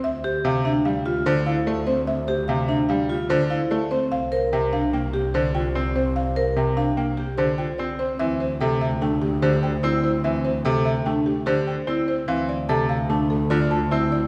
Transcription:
X:1
M:5/4
L:1/8
Q:1/4=147
K:Cmix
V:1 name="Marimba"
e c f e f G c f d c | e c f e f G c f d c | f c g f g G c g d c | f c g f g G c g d c |
e c g e g G c g d c | e c g e g G c g d c | f d a f a A d a e d |]
V:2 name="Vibraphone"
z G z D z F z E z C | z G z D z F z E z C | z B z D z G z F z C | z B z D z G z F z C |
C z A z D z G z E z | C z A z D z G z E z | C z A z D z F z E z |]
V:3 name="Grand piano" clef=bass
z2 C, z G, z D, z A, z | z2 C, z G, z D, z A, z | z2 C, z B, z D, z C z | z2 C, z B, z D, z C z |
E, z C, z A, z D, z C z | E, z C, z A, z D, z C z | E, z C, z A, z D, z C z |]
V:4 name="Double bass" clef=bass
D,,8- D,,2- | D,,8- D,,2 | C,,8- C,,2- | C,,8- C,,2 |
D,,8- D,,2- | D,,8- D,,2 | D,,8- D,,2 |]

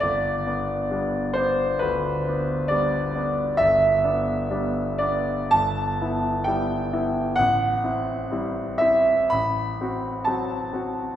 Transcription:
X:1
M:4/4
L:1/8
Q:1/4=65
K:G
V:1 name="Grand piano"
d3 c B2 d2 | e3 d a2 g2 | f3 e b2 a2 |]
V:2 name="Grand piano"
G,,, [B,D] [G,B,D] [B,D] D,, [B,D] [G,B,D] [B,D] | G,,, [B,D] [G,B,D] [B,D] G,,, [B,E] [G,B,E] [B,E] | A,,, [CE] [G,CE] [CE] A,,, [CF] [F,CF] [CF] |]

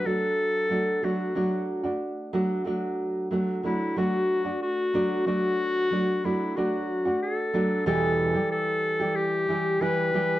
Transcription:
X:1
M:4/4
L:1/16
Q:1/4=92
K:Dmix
V:1 name="Clarinet"
A6 F4 z6 | z6 E2 F4 F4 | F6 E2 F4 A4 | A4 A4 G4 B4 |]
V:2 name="Nylon-string guitar"
[F,A,DF]4 [F,A,DF]2 [F,A,DF]2 [F,A,DF]3 [A,DF]3 [F,A,DF]2 | [F,A,DF]4 [F,A,DF]2 [F,A,DF]2 [F,A,DF]3 [A,DF]3 [F,A,DF]2 | [F,A,DF]4 [F,A,DF]2 [F,A,DF]2 [F,A,DF]3 [A,DF]3 [F,A,DF]2 | [E,,B,,E,G,EG]3 [E,G,EG]4 [E,G,EG]3 [E,G,EG]2 [E,G,EG]2 [E,G,EG]2 |]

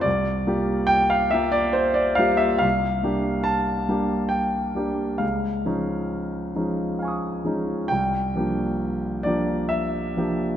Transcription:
X:1
M:3/4
L:1/16
Q:1/4=68
K:C
V:1 name="Grand piano"
d4 g f e d c d f e | f4 a4 g4 | f8 [f_a_d'_e']4 | g6 d2 e4 |]
V:2 name="Grand piano"
C,,2 [G,_B,FG]4 [G,B,FG]4 [G,B,FG]2 | C,,2 [G,_B,DG]4 [G,B,DG]4 [G,B,DG]2 | _D,,2 [F,_A,_D_E]4 [F,A,DE]4 [F,A,DE]2 | C,,2 [F,_B,DG]4 [F,B,DG]4 [F,B,DG]2 |]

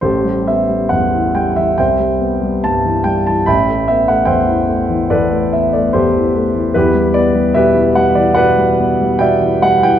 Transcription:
X:1
M:4/4
L:1/16
Q:1/4=72
K:Ador
V:1 name="Grand piano"
[GAc]2 e2 f2 g e [ceg]4 a2 g a | [egb]2 e f [ceg]4 [ABd]2 e d [GAc]4 | [EGB]2 d2 [GBe]2 f d [Bdf]4 [deg]2 f g |]
V:2 name="Grand piano" clef=bass
A,,, G, B, G, E,, E, G, E, C,, G, B, G, G,, E, G, E, | A,,, A, B, A, E,, E, A, E, E,, A, B, A, E,, E, A, E, | E,, G, B, G, B,, E, G, E, B,, G, B, G, B,, E, G, E, |]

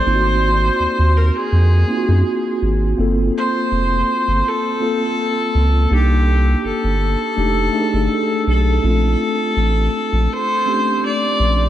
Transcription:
X:1
M:4/4
L:1/16
Q:"Swing 16ths" 1/4=82
K:Gdor
V:1 name="Viola"
c6 ^A ^G6- G z2 | z2 c6 A8 | G4 A8- A2 A2- | A8 c4 d4 |]
V:2 name="Tine electric piano"
[^A,^B,^DF^F]6 z4 [A,B,D=F^F]6 | [B,CFA]6 z4 [B,CFA]6 | [B,D_EG]6 z2 [A,DEG]2 [A,DE^GA]6 | [A,C^CDF]6 z4 [A,=C^CDG]6 |]
V:3 name="Analog synth bass" clef=bass
^G,,,4 ^D,, D,,2 z F,,2 z ^F,, z2 G,,,2 | G,,,2 z2 F,,,2 z G,,, z6 ^C,,2 | C,,4 G,,, G,,,2 z F,,,2 z G,,, z2 =B,,,2 | B,,,2 z2 A,,,2 z B,,, z6 B,,,2 |]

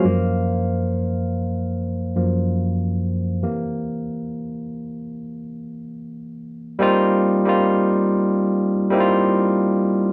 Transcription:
X:1
M:4/4
L:1/16
Q:"Swing 16ths" 1/4=71
K:Cmix
V:1 name="Tine electric piano"
[cf] z12 z3 | z16 | [K:Cdor] [G,B,CEF]3 [G,B,CEF]6 z [G,B,CE=EF]4- [G,B,C_E=EF] z |]
V:2 name="Tine electric piano" clef=bass
[_G,,F,B,]2 z8 [G,,F,B,]2 z4 | [C,E,B,]16 | [K:Cdor] z16 |]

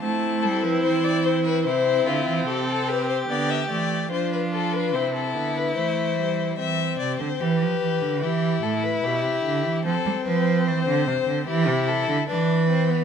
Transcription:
X:1
M:4/4
L:1/16
Q:1/4=74
K:Aphr
V:1 name="Violin"
a2 A =B c d c B c2 F2 G A B c | d e d2 c =B A B c A2 B c4 | [K:C] e2 d c B4 G2 A B G4 | A2 B2 c4 G2 A2 B4 |]
V:2 name="Violin"
C8 E4 A2 G2- | G4 F4 E8 | [K:C] C4 G4 E8 | C8 E4 D2 C B, |]
V:3 name="Viola"
E8 C8 | =B,2 A,2 D4 C2 B,2 A,2 G,2 | [K:C] z16 | z16 |]
V:4 name="Cello" clef=bass
A,2 G, F, E,4 C,2 D, E, C,4 | D,2 E,2 F,4 C,2 D,2 E,4 | [K:C] E,2 C, D, E, F, E, D, E,2 A,,2 B,, C, D, E, | F, G, F,2 E, D, C, D, E, C,2 D, E,4 |]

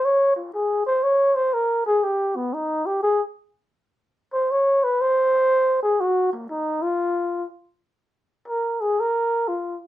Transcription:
X:1
M:4/4
L:1/8
Q:"Swing" 1/4=121
K:Bbm
V:1 name="Muted trumpet"
d F A c d c B A | =G _C E G A z3 | z c d _c =c3 A | G B, E F3 z2 |
z2 B A B2 F z |]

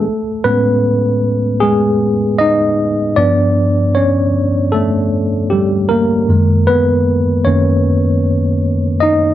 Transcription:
X:1
M:4/4
L:1/8
Q:"Swing 16ths" 1/4=77
K:F#dor
V:1 name="Tine electric piano"
[A,A] [B,B]3 [G,G]2 [Dd]2 | [=D=d]2 [Cc]2 [A,A]2 [=G,=G] [^A,^A]- | [^A,^A] [B,B]2 [Cc]4 [Dd] |]
V:2 name="Tine electric piano" clef=bass
z [A,,G,C]3 z4 | [=G,,=F,B,]3 z4 z | [F,,D,G,]3 [F,,D,^A,] z4 |]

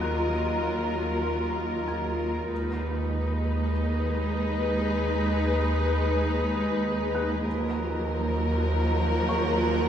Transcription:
X:1
M:4/4
L:1/8
Q:1/4=97
K:Ebm
V:1 name="Felt piano"
[Bg'c'']6 a'2- | a'4 z4 | z6 z g'- | g'4- g' z [dd']2 |]
V:2 name="Ambient pad"
[FBe]8 | [Ace]8- | [Ace]8 | [Beg]8 |]
V:3 name="Violin section"
B8 | c8- | c8 | B8 |]
V:4 name="Viola section" clef=bass
[G,F]8 | [A,E]8- | [A,E]8 | [F,G,]8 |]
V:5 name="Cello section" clef=bass
E,,8 | E,,8- | E,,8 | E,,8 |]
V:6 name="Double bass section" clef=bass
E,,8 | E,,8- | E,,8 | E,,8 |]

